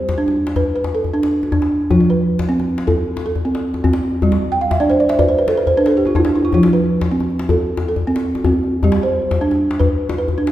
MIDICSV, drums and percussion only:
0, 0, Header, 1, 2, 480
1, 0, Start_track
1, 0, Tempo, 384862
1, 2381, Time_signature, 12, 3, 24, 8
1, 13117, End_track
2, 0, Start_track
2, 0, Title_t, "Djembe"
2, 108, Note_on_c, 9, 62, 49
2, 108, Note_on_c, 9, 64, 49
2, 221, Note_off_c, 9, 62, 0
2, 221, Note_on_c, 9, 62, 20
2, 233, Note_off_c, 9, 64, 0
2, 346, Note_off_c, 9, 62, 0
2, 348, Note_on_c, 9, 62, 19
2, 348, Note_on_c, 9, 63, 52
2, 473, Note_off_c, 9, 62, 0
2, 473, Note_off_c, 9, 63, 0
2, 583, Note_on_c, 9, 62, 50
2, 696, Note_off_c, 9, 62, 0
2, 696, Note_on_c, 9, 62, 21
2, 696, Note_on_c, 9, 64, 64
2, 818, Note_off_c, 9, 62, 0
2, 818, Note_on_c, 9, 62, 21
2, 821, Note_off_c, 9, 64, 0
2, 942, Note_off_c, 9, 62, 0
2, 1051, Note_on_c, 9, 62, 46
2, 1051, Note_on_c, 9, 63, 46
2, 1175, Note_off_c, 9, 62, 0
2, 1175, Note_off_c, 9, 63, 0
2, 1178, Note_on_c, 9, 62, 20
2, 1301, Note_off_c, 9, 62, 0
2, 1301, Note_on_c, 9, 62, 21
2, 1301, Note_on_c, 9, 64, 51
2, 1423, Note_off_c, 9, 62, 0
2, 1423, Note_on_c, 9, 62, 20
2, 1426, Note_off_c, 9, 64, 0
2, 1536, Note_off_c, 9, 62, 0
2, 1536, Note_on_c, 9, 62, 50
2, 1652, Note_off_c, 9, 62, 0
2, 1652, Note_on_c, 9, 62, 20
2, 1777, Note_off_c, 9, 62, 0
2, 1783, Note_on_c, 9, 63, 51
2, 1896, Note_on_c, 9, 62, 21
2, 1896, Note_on_c, 9, 64, 67
2, 1908, Note_off_c, 9, 63, 0
2, 2020, Note_off_c, 9, 62, 0
2, 2020, Note_on_c, 9, 62, 48
2, 2021, Note_off_c, 9, 64, 0
2, 2145, Note_off_c, 9, 62, 0
2, 2147, Note_on_c, 9, 62, 20
2, 2258, Note_off_c, 9, 62, 0
2, 2258, Note_on_c, 9, 62, 20
2, 2376, Note_on_c, 9, 64, 64
2, 2383, Note_off_c, 9, 62, 0
2, 2499, Note_on_c, 9, 63, 53
2, 2500, Note_off_c, 9, 64, 0
2, 2624, Note_off_c, 9, 63, 0
2, 2983, Note_on_c, 9, 62, 50
2, 2983, Note_on_c, 9, 64, 49
2, 3108, Note_off_c, 9, 62, 0
2, 3108, Note_off_c, 9, 64, 0
2, 3115, Note_on_c, 9, 62, 22
2, 3237, Note_off_c, 9, 62, 0
2, 3237, Note_on_c, 9, 62, 22
2, 3237, Note_on_c, 9, 63, 55
2, 3355, Note_off_c, 9, 62, 0
2, 3355, Note_on_c, 9, 62, 21
2, 3361, Note_off_c, 9, 63, 0
2, 3466, Note_off_c, 9, 62, 0
2, 3466, Note_on_c, 9, 62, 51
2, 3588, Note_on_c, 9, 64, 70
2, 3591, Note_off_c, 9, 62, 0
2, 3713, Note_off_c, 9, 64, 0
2, 3950, Note_on_c, 9, 62, 49
2, 3950, Note_on_c, 9, 63, 50
2, 4075, Note_off_c, 9, 62, 0
2, 4075, Note_off_c, 9, 63, 0
2, 4185, Note_on_c, 9, 62, 22
2, 4185, Note_on_c, 9, 64, 56
2, 4310, Note_off_c, 9, 62, 0
2, 4310, Note_off_c, 9, 64, 0
2, 4425, Note_on_c, 9, 62, 51
2, 4550, Note_off_c, 9, 62, 0
2, 4664, Note_on_c, 9, 63, 58
2, 4789, Note_off_c, 9, 63, 0
2, 4792, Note_on_c, 9, 64, 71
2, 4906, Note_on_c, 9, 62, 52
2, 4917, Note_off_c, 9, 64, 0
2, 5030, Note_off_c, 9, 62, 0
2, 5030, Note_on_c, 9, 62, 21
2, 5155, Note_off_c, 9, 62, 0
2, 5265, Note_on_c, 9, 64, 69
2, 5388, Note_on_c, 9, 62, 55
2, 5388, Note_on_c, 9, 63, 59
2, 5389, Note_off_c, 9, 64, 0
2, 5512, Note_off_c, 9, 62, 0
2, 5512, Note_off_c, 9, 63, 0
2, 5875, Note_on_c, 9, 62, 54
2, 5875, Note_on_c, 9, 64, 56
2, 5990, Note_off_c, 9, 62, 0
2, 5990, Note_on_c, 9, 62, 22
2, 5999, Note_off_c, 9, 64, 0
2, 6115, Note_off_c, 9, 62, 0
2, 6125, Note_on_c, 9, 62, 24
2, 6125, Note_on_c, 9, 63, 53
2, 6244, Note_off_c, 9, 62, 0
2, 6244, Note_on_c, 9, 62, 22
2, 6250, Note_off_c, 9, 63, 0
2, 6353, Note_off_c, 9, 62, 0
2, 6353, Note_on_c, 9, 62, 56
2, 6473, Note_on_c, 9, 64, 72
2, 6478, Note_off_c, 9, 62, 0
2, 6598, Note_off_c, 9, 64, 0
2, 6832, Note_on_c, 9, 62, 53
2, 6832, Note_on_c, 9, 63, 53
2, 6956, Note_off_c, 9, 62, 0
2, 6956, Note_off_c, 9, 63, 0
2, 7068, Note_on_c, 9, 62, 22
2, 7068, Note_on_c, 9, 64, 59
2, 7192, Note_off_c, 9, 62, 0
2, 7192, Note_off_c, 9, 64, 0
2, 7307, Note_on_c, 9, 62, 54
2, 7432, Note_off_c, 9, 62, 0
2, 7549, Note_on_c, 9, 63, 58
2, 7671, Note_on_c, 9, 64, 73
2, 7674, Note_off_c, 9, 63, 0
2, 7791, Note_on_c, 9, 62, 57
2, 7796, Note_off_c, 9, 64, 0
2, 7909, Note_off_c, 9, 62, 0
2, 7909, Note_on_c, 9, 62, 21
2, 8033, Note_off_c, 9, 62, 0
2, 8138, Note_on_c, 9, 64, 68
2, 8262, Note_off_c, 9, 64, 0
2, 8270, Note_on_c, 9, 62, 55
2, 8270, Note_on_c, 9, 63, 57
2, 8395, Note_off_c, 9, 62, 0
2, 8395, Note_off_c, 9, 63, 0
2, 8748, Note_on_c, 9, 62, 55
2, 8748, Note_on_c, 9, 64, 52
2, 8864, Note_off_c, 9, 62, 0
2, 8864, Note_on_c, 9, 62, 22
2, 8873, Note_off_c, 9, 64, 0
2, 8984, Note_off_c, 9, 62, 0
2, 8984, Note_on_c, 9, 62, 24
2, 8984, Note_on_c, 9, 63, 56
2, 9108, Note_off_c, 9, 62, 0
2, 9108, Note_on_c, 9, 62, 23
2, 9109, Note_off_c, 9, 63, 0
2, 9222, Note_off_c, 9, 62, 0
2, 9222, Note_on_c, 9, 62, 53
2, 9343, Note_on_c, 9, 64, 73
2, 9347, Note_off_c, 9, 62, 0
2, 9467, Note_off_c, 9, 64, 0
2, 9695, Note_on_c, 9, 62, 52
2, 9695, Note_on_c, 9, 63, 54
2, 9820, Note_off_c, 9, 62, 0
2, 9820, Note_off_c, 9, 63, 0
2, 9932, Note_on_c, 9, 62, 24
2, 9932, Note_on_c, 9, 64, 60
2, 10057, Note_off_c, 9, 62, 0
2, 10057, Note_off_c, 9, 64, 0
2, 10175, Note_on_c, 9, 62, 54
2, 10300, Note_off_c, 9, 62, 0
2, 10415, Note_on_c, 9, 63, 60
2, 10532, Note_on_c, 9, 64, 74
2, 10539, Note_off_c, 9, 63, 0
2, 10657, Note_off_c, 9, 64, 0
2, 10769, Note_on_c, 9, 62, 21
2, 10894, Note_off_c, 9, 62, 0
2, 11009, Note_on_c, 9, 62, 22
2, 11009, Note_on_c, 9, 64, 72
2, 11123, Note_off_c, 9, 62, 0
2, 11123, Note_on_c, 9, 62, 58
2, 11123, Note_on_c, 9, 63, 54
2, 11134, Note_off_c, 9, 64, 0
2, 11248, Note_off_c, 9, 62, 0
2, 11248, Note_off_c, 9, 63, 0
2, 11250, Note_on_c, 9, 62, 24
2, 11375, Note_off_c, 9, 62, 0
2, 11493, Note_on_c, 9, 62, 22
2, 11613, Note_off_c, 9, 62, 0
2, 11613, Note_on_c, 9, 62, 55
2, 11613, Note_on_c, 9, 64, 58
2, 11738, Note_off_c, 9, 62, 0
2, 11738, Note_off_c, 9, 64, 0
2, 11746, Note_on_c, 9, 62, 25
2, 11863, Note_on_c, 9, 63, 57
2, 11871, Note_off_c, 9, 62, 0
2, 11988, Note_off_c, 9, 63, 0
2, 12106, Note_on_c, 9, 62, 58
2, 12227, Note_off_c, 9, 62, 0
2, 12227, Note_on_c, 9, 62, 25
2, 12227, Note_on_c, 9, 64, 75
2, 12352, Note_off_c, 9, 62, 0
2, 12352, Note_off_c, 9, 64, 0
2, 12589, Note_on_c, 9, 62, 57
2, 12589, Note_on_c, 9, 63, 60
2, 12714, Note_off_c, 9, 62, 0
2, 12714, Note_off_c, 9, 63, 0
2, 12825, Note_on_c, 9, 64, 57
2, 12945, Note_on_c, 9, 62, 24
2, 12950, Note_off_c, 9, 64, 0
2, 13060, Note_off_c, 9, 62, 0
2, 13060, Note_on_c, 9, 62, 58
2, 13117, Note_off_c, 9, 62, 0
2, 13117, End_track
0, 0, End_of_file